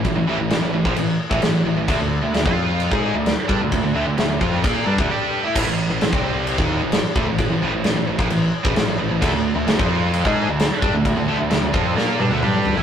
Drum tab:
CC |x---x---x---x---|x---x---x---x---|x---x---x-------|x---x---x---x---|
SD |----o-------o---|----o-------o---|----o-----------|----o-------o---|
T1 |----------------|----------------|----------------|----------------|
T2 |----------------|----------------|----------------|----------------|
FT |----------------|----------------|----------------|----------------|
BD |o------o---o----|o----o---o----o-|o-----o-o--o----|o----o---o----o-|

CC |x---x---x---x---|x---x---x---x---|x---x-----------|
SD |----o-------o---|----o-------o---|----o---o-------|
T1 |----------------|----------------|----------oo----|
T2 |----------------|----------------|------------o---|
FT |----------------|----------------|--------------oo|
BD |o------o---o----|o----o---o----o-|o-----o---------|